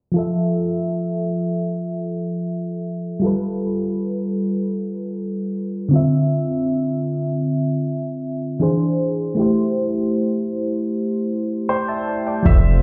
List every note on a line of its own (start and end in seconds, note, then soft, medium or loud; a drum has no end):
0.12 3.17 F3 medium
0.12 3.18 F4 medium
0.16 3.19 A4 medium
0.16 3.20 E5 medium
3.20 5.86 G3 medium
3.20 5.87 F4 medium
3.24 5.89 A4 medium
3.24 5.90 B4 medium
5.89 8.55 D3 medium
5.89 8.57 C4 medium
5.93 8.58 F4 medium
5.93 8.59 E5 medium
8.59 9.37 E3 medium
8.59 9.38 D4 medium
8.59 9.38 G#4 medium
8.59 9.39 C5 medium
9.35 12.02 A3 medium
9.35 12.03 E4 medium
9.39 12.04 G4 medium
9.39 12.05 C5 medium
11.69 12.48 C5 medium
11.69 11.87 D5 medium
11.69 11.87 G5 medium
11.88 12.25 E5 medium
11.88 12.25 A5 medium
12.27 12.63 D5 medium
12.27 12.63 G5 medium
12.43 12.82 F1 loud
12.43 12.82 C3 medium
12.43 12.82 F3 medium
12.43 12.82 A3 medium
12.43 12.82 C4 medium
12.43 12.82 F4 medium
12.43 12.82 E5 medium
12.43 kick medium
12.43 closed hi-hat medium
12.47 12.82 A4 medium
12.47 12.82 C5 medium